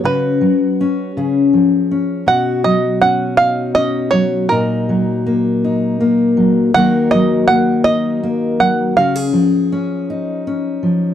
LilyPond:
<<
  \new Staff \with { instrumentName = "Five-string banjo" } { \time 6/8 \key cis \mixolydian \tempo 4. = 54 b'2~ b'8 r8 | fis''8 dis''8 fis''8 eis''8 dis''8 cis''8 | ais'2~ ais'8 r8 | fis''8 dis''8 fis''8 dis''4 fis''8 |
eis''2~ eis''8 r8 | }
  \new Staff \with { instrumentName = "Steel-string acoustic guitar" } { \time 6/8 \key cis \mixolydian << { fis'4 cis'8 gis'4 cis'8 | fis'4 cis'8 dis'8 cis'4 | dis'4 ais8 dis'8 ais4 | <fis ais dis' fis'>4 ais8 dis'8 ais4 |
fis'16 gis'8. cis'8 dis'8 cis'4 | } \\ { cis8 fis4 cis8 eis4 | b,8 fis2 fis8 | ais,8 fis2 fis8 | dis8 fis2 fis8 |
cis8 eis2 eis8 | } >> }
>>